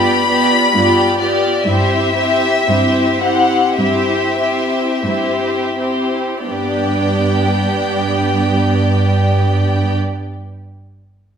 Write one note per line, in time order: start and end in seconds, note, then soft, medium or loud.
0.00 0.60 G2 medium
0.00 0.26 B3 soft
0.00 0.26 F4 soft
0.00 0.28 G4 soft
0.00 0.29 D5 soft
0.00 1.19 B5 medium
0.27 0.72 B3 soft
0.27 0.71 F4 soft
0.27 0.74 G4 soft
0.27 0.74 D5 soft
0.72 1.54 G2 soft
0.72 1.19 B3 soft
0.72 1.18 F4 soft
0.77 1.20 G4 soft
0.77 1.21 D5 soft
1.19 1.67 B3 soft
1.19 1.67 F4 soft
1.19 1.68 G4 soft
1.19 1.66 D5 medium
1.19 1.67 D5 soft
1.65 2.54 G2 soft
1.65 2.15 C4 soft
1.65 2.14 E4 soft
1.65 3.21 E5 medium
1.69 2.17 G4 soft
1.69 2.17 C5 soft
2.15 2.66 C4 soft
2.15 2.66 E4 soft
2.15 2.68 G4 soft
2.15 2.68 C5 soft
2.67 3.64 G2 soft
2.67 3.20 C4 soft
2.67 3.21 E4 soft
2.67 3.22 G4 soft
2.67 3.22 C5 soft
3.21 3.78 C4 soft
3.21 3.78 E4 soft
3.21 3.79 G4 soft
3.21 3.79 C5 soft
3.21 3.79 F#5 medium
3.78 4.88 G2 soft
3.78 4.39 C4 soft
3.78 4.39 E4 soft
3.78 4.38 G4 soft
3.78 4.39 C5 soft
3.78 5.72 E5 soft
4.40 5.04 C4 soft
4.40 5.04 E4 soft
4.40 5.03 G4 soft
4.40 5.04 C5 soft
5.04 6.30 G2 soft
5.04 5.77 C4 soft
5.04 5.76 E4 soft
5.04 5.76 G4 soft
5.04 5.76 C5 soft
5.78 6.47 C4 soft
5.78 6.47 E4 soft
5.78 6.46 G4 soft
5.78 6.47 C5 soft
6.47 9.96 G2 soft
6.47 9.97 B3 soft
6.47 9.97 D4 soft
6.47 9.96 G4 soft
6.47 9.97 D5 soft
6.47 9.95 G5 soft